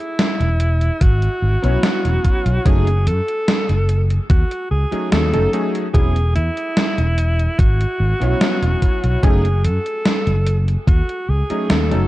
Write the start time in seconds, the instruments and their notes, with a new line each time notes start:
Already playing: alto saxophone E4
0.00 closed hi-hat
0.19 snare, closed hi-hat
0.40 fretless electric bass E1, closed hi-hat
0.60 closed hi-hat
0.81 closed hi-hat
1.01 fretless electric bass G#1, alto saxophone F#4, kick, closed hi-hat
1.22 closed hi-hat
1.42 fretless electric bass G#1
1.62 fretless electric bass B1, electric grand piano F#3 B3 C#4 E4 C#5, closed hi-hat
1.83 snare, closed hi-hat
2.05 fretless electric bass E1, closed hi-hat
2.24 kick, closed hi-hat
2.46 fretless electric bass B1, closed hi-hat
2.65 fretless electric bass F#1, electric grand piano F#3 A3 C#4 D#4 G#4, alto saxophone G#4, kick, closed hi-hat
2.87 closed hi-hat
3.07 fretless electric bass F#2, alto saxophone A4, closed hi-hat
3.28 closed hi-hat
3.48 snare, closed hi-hat
3.69 fretless electric bass F#1, closed hi-hat
3.89 closed hi-hat
4.10 closed hi-hat
4.30 fretless electric bass D#2, alto saxophone F#4, kick, closed hi-hat
4.51 closed hi-hat
4.71 fretless electric bass C#2, alto saxophone G#4
4.91 electric grand piano F#3 A3 C#4 D#4 G#4, muted fretless electric bass stroke, closed hi-hat
5.12 fretless electric bass D#2, alto saxophone A4, snare, closed hi-hat
5.33 fretless electric bass F#1, electric grand piano F#3 A3 C#4 D#4 A4, closed hi-hat
5.53 electric grand piano F#3 A3 C#4 D#4 G#4, closed hi-hat
5.75 closed hi-hat
5.93 fretless electric bass E1, electric grand piano F#3 B3 C#4 E4 G#4, alto saxophone G#4, kick, closed hi-hat
6.16 closed hi-hat
6.35 fretless electric bass E2, alto saxophone E4, closed hi-hat
6.57 closed hi-hat
6.77 snare, closed hi-hat
6.98 fretless electric bass E1, closed hi-hat
7.18 closed hi-hat
7.39 closed hi-hat
7.59 fretless electric bass G#1, alto saxophone F#4, kick, closed hi-hat
7.81 closed hi-hat
8.00 fretless electric bass G#1
8.20 fretless electric bass B1, electric grand piano F#3 B3 C#4 E4 C#5, closed hi-hat
8.41 snare, closed hi-hat
8.62 fretless electric bass E1, closed hi-hat
8.82 kick, closed hi-hat
9.04 fretless electric bass B1, closed hi-hat
9.23 fretless electric bass F#1, electric grand piano F#3 A3 C#4 D#4 G#4, alto saxophone G#4, kick, closed hi-hat
9.45 closed hi-hat
9.64 fretless electric bass F#2, alto saxophone A4, closed hi-hat
9.86 closed hi-hat
10.05 snare, closed hi-hat
10.27 fretless electric bass F#1, closed hi-hat
10.47 closed hi-hat
10.68 closed hi-hat
10.87 fretless electric bass D#2, alto saxophone F#4, kick, closed hi-hat
11.09 closed hi-hat
11.29 fretless electric bass C#2, alto saxophone G#4
11.50 electric grand piano F#3 A3 C#4 D#4 G#4, muted fretless electric bass stroke, closed hi-hat
11.70 fretless electric bass D#2, alto saxophone A4, snare, closed hi-hat
11.90 fretless electric bass F#1, electric grand piano F#3 A3 C#4 D#4 A4, closed hi-hat